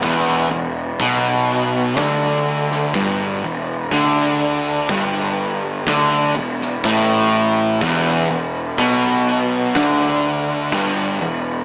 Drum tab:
CC |x---x---x---x---|x---x---x---x---|x---x---x---x---|
SD |--------o--o----|--------o--o----|--------o-------|
BD |o---o---o---o---|o---o---o---o---|o---o---o---o---|